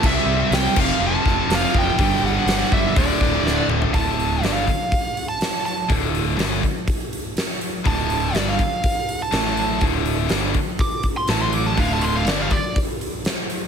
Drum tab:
CC |x-----x---------|----------------|----------------|----------------|
HH |----o-------o---|o---o---o-------|o-o-o-o-o-o-o-o-|o-o-o-o-o-o-o-o-|
SD |----o-----o-o---|----o-----o-o---|----o-------o---|----o-------o---|
T2 |----------------|--------------o-|----------------|----------------|
FT |----------------|---------------o|----------------|----------------|
BD |o-----o---o---o-|o-----o-o-o-----|o-----o-o-------|o-----o-o-------|

CC |----------------|----------------|----------------|
HH |o-o-o-o-o-o-o-o-|o-o-o-o-o-o-o-o-|o-o-o-o-o-o-o-o-|
SD |----o-------o---|----o-------o---|----o-------o---|
T2 |----------------|----------------|----------------|
FT |----------------|----------------|----------------|
BD |o-----o-o-------|o-----o-o-o-----|o-----o-o-------|